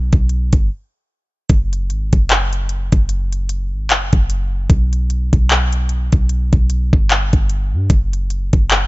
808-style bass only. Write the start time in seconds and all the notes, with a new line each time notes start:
Already playing: B1
0.13 B1
0.53 G1
1.50 F#1
1.90 G#1
2.13 F#1
2.93 F#1
3.73 G#1
3.90 F#1
4.13 F#1
4.70 B1
5.33 B1
6.13 B1
6.53 B1
6.93 G1
7.33 G1
7.73 G2
7.90 F#1
8.53 F#1